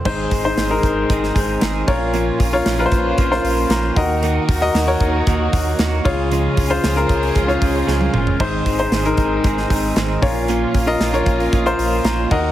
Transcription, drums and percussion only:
0.05 kick, crash
0.31 kick, hi-hat pedal, open hi-hat
0.57 snare, hi-hat pedal, open hi-hat
0.83 kick, hi-hat pedal, open hi-hat
1.10 kick, hi-hat pedal, open hi-hat
1.23 snare
1.36 kick, hi-hat pedal, open hi-hat
1.61 snare, hi-hat pedal, open hi-hat
1.88 kick, crash
2.14 hi-hat pedal, open hi-hat
2.40 kick, hi-hat pedal, open hi-hat
2.66 snare, hi-hat pedal, open hi-hat
2.92 kick, hi-hat pedal, open hi-hat
3.18 kick, hi-hat pedal, open hi-hat
3.32 snare
3.44 hi-hat pedal, open hi-hat
3.70 snare, hi-hat pedal, open hi-hat
3.96 kick, hi-hat pedal, open hi-hat
4.23 hi-hat pedal, open hi-hat
4.49 kick, hi-hat pedal, open hi-hat
4.75 snare, hi-hat pedal, open hi-hat
5.00 kick, hi-hat pedal, open hi-hat
5.27 kick, hi-hat pedal, open hi-hat
5.53 kick, hi-hat pedal, open hi-hat
5.79 snare, hi-hat pedal, open hi-hat
6.05 kick, crash
6.31 hi-hat pedal, open hi-hat
6.57 kick, hi-hat pedal, open hi-hat
6.71 open hi-hat
6.84 snare, hi-hat pedal, open hi-hat
6.97 hi-hat pedal
7.09 kick, hi-hat pedal, open hi-hat
7.23 open hi-hat
7.35 kick, hi-hat pedal, open hi-hat
7.49 hi-hat pedal
7.62 kick, hi-hat pedal, open hi-hat
7.88 snare
8.01 high tom
8.14 mid tom
8.27 floor tom
8.40 kick, crash
8.66 kick, hi-hat pedal, open hi-hat
8.79 open hi-hat
8.92 snare, hi-hat pedal, open hi-hat
9.05 hi-hat pedal
9.17 kick, hi-hat pedal, open hi-hat
9.44 kick, hi-hat pedal, open hi-hat
9.57 snare
9.70 kick, hi-hat pedal, open hi-hat
9.96 snare, hi-hat pedal, open hi-hat
10.23 kick, hi-hat pedal, open hi-hat
10.48 hi-hat pedal, open hi-hat
10.74 kick, hi-hat pedal, open hi-hat
10.87 open hi-hat
11.01 snare, hi-hat pedal, open hi-hat
11.14 hi-hat pedal
11.26 kick, hi-hat pedal, open hi-hat
11.40 open hi-hat
11.53 kick, hi-hat pedal, open hi-hat
11.66 hi-hat pedal
11.79 hi-hat pedal, open hi-hat
12.04 snare, hi-hat pedal, open hi-hat
12.31 kick, crash

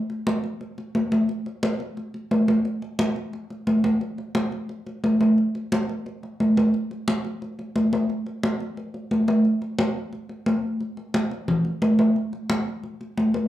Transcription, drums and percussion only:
0.10 high conga
0.27 high conga
0.44 high conga
0.61 high conga
0.78 high conga
0.95 high conga
1.12 high conga
1.29 high conga
1.46 high conga
1.63 high conga
1.80 high conga
1.97 high conga
2.14 high conga
2.31 high conga
2.48 high conga
2.65 high conga
2.82 high conga
2.99 high conga
3.16 high conga
3.33 high conga
3.50 high conga
3.67 high conga
3.84 high conga
4.01 high conga
4.18 high conga
4.35 high conga
4.52 high conga
4.69 high conga
4.87 high conga
5.04 high conga
5.21 high conga
5.38 high conga
5.55 high conga
5.72 high conga
5.89 high conga
6.06 high conga
6.23 high conga
6.40 high conga
6.57 high conga
6.74 high conga
6.91 high conga
7.08 high conga
7.25 high conga
7.42 high conga
7.59 high conga
7.76 high conga
7.93 high conga
8.10 high conga
8.26 high conga
8.43 high conga
8.60 high conga
8.77 high conga
8.94 high conga
9.11 high conga
9.28 high conga
9.45 high conga
9.62 high conga
9.79 high conga
10.13 high conga
10.29 high conga
10.46 high conga
10.80 high conga
10.97 high conga
11.14 high conga
11.31 high conga
11.48 high conga, low conga
11.65 high conga
11.82 high conga
11.99 high conga
12.16 high conga
12.33 high conga
12.50 high conga
12.84 high conga
13.01 high conga
13.18 high conga
13.34 high conga

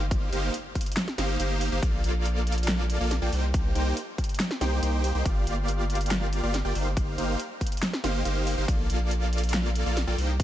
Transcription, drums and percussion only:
0.11 kick, closed hi-hat
0.33 closed hi-hat
0.54 closed hi-hat
0.75 kick, closed hi-hat
0.81 closed hi-hat
0.86 closed hi-hat
0.92 closed hi-hat
0.97 snare, closed hi-hat
1.08 snare
1.18 snare, closed hi-hat
1.40 closed hi-hat
1.61 open hi-hat
1.83 kick, closed hi-hat
2.04 closed hi-hat
2.25 closed hi-hat
2.47 closed hi-hat
2.52 closed hi-hat
2.58 closed hi-hat
2.63 closed hi-hat
2.68 snare, closed hi-hat
2.90 closed hi-hat
3.11 snare, closed hi-hat
3.33 open hi-hat
3.54 kick, closed hi-hat
3.75 closed hi-hat
3.97 closed hi-hat
4.18 kick, closed hi-hat
4.24 closed hi-hat
4.29 closed hi-hat
4.34 closed hi-hat
4.40 snare, closed hi-hat
4.51 snare
4.61 snare, closed hi-hat
4.83 closed hi-hat
5.04 open hi-hat
5.25 kick, closed hi-hat
5.47 closed hi-hat
5.68 closed hi-hat
5.90 closed hi-hat
5.95 closed hi-hat
6.01 closed hi-hat
6.06 closed hi-hat
6.11 snare, closed hi-hat
6.33 closed hi-hat
6.54 snare, closed hi-hat
6.75 open hi-hat
6.97 kick, closed hi-hat
7.18 closed hi-hat
7.40 closed hi-hat
7.61 kick, closed hi-hat
7.67 closed hi-hat
7.72 closed hi-hat
7.77 closed hi-hat
7.83 snare, closed hi-hat
7.93 snare
8.04 snare, closed hi-hat
8.25 closed hi-hat
8.47 open hi-hat
8.68 kick, closed hi-hat
8.90 closed hi-hat
9.11 closed hi-hat
9.33 closed hi-hat
9.38 closed hi-hat
9.44 closed hi-hat
9.49 closed hi-hat
9.54 snare, closed hi-hat
9.75 closed hi-hat
9.97 snare, closed hi-hat
10.18 open hi-hat
10.40 kick, closed hi-hat

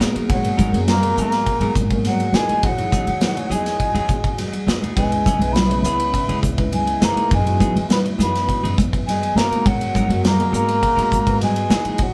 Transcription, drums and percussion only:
0.00 snare, hi-hat pedal, muted conga
0.16 ride
0.30 kick, ride, muted conga
0.45 ride
0.58 kick, hi-hat pedal, muted conga, high conga
0.74 ride
0.88 snare, ride, high conga
1.03 ride
1.18 hi-hat pedal
1.32 snare, ride
1.46 kick, ride, muted conga
1.61 ride
1.75 kick, hi-hat pedal
1.90 kick, ride
2.05 snare, ride, high conga
2.20 ride
2.34 snare, hi-hat pedal
2.49 ride
2.63 kick, ride, muted conga
2.78 ride
2.92 kick, hi-hat pedal, muted conga
3.07 ride
3.21 snare, ride, high conga
3.37 ride
3.50 hi-hat pedal, high conga
3.66 snare, ride
3.80 kick, ride
3.95 ride
4.09 kick, hi-hat pedal, low conga
4.24 kick, ride
4.38 snare, ride, high conga
4.53 ride, high conga
4.67 snare, hi-hat pedal, low conga
4.82 ride, low conga
4.97 kick, ride, muted conga
5.12 ride
5.26 kick, hi-hat pedal, muted conga, high conga
5.42 ride
5.55 snare, ride, high conga
5.71 ride
5.84 hi-hat pedal
6.00 ride
6.14 kick, ride, muted conga
6.29 ride
6.43 kick, hi-hat pedal
6.58 kick, ride
6.72 ride, high conga
6.87 ride
7.02 snare, hi-hat pedal
7.17 ride
7.31 kick, ride, muted conga
7.47 ride
7.60 kick, hi-hat pedal
7.77 ride
7.89 snare, ride, high conga
8.06 ride
8.19 snare, hi-hat pedal, high conga
8.35 snare, ride
8.49 kick, ride, muted conga
8.65 ride
8.78 kick, hi-hat pedal, low conga
8.93 kick, ride
9.07 snare, ride, high conga
9.23 ride
9.37 snare, hi-hat pedal
9.52 ride
9.66 kick, ride
9.81 ride
9.95 kick, hi-hat pedal, muted conga, high conga
10.10 ride
10.24 snare, ride, high conga
10.40 ride
10.54 hi-hat pedal
10.69 ride
10.83 kick, ride, muted conga
10.99 ride
11.12 kick, hi-hat pedal
11.27 kick, ride
11.41 snare, ride, high conga
11.56 ride
11.70 snare, hi-hat pedal, muted conga
11.85 ride
11.98 kick, ride, muted conga

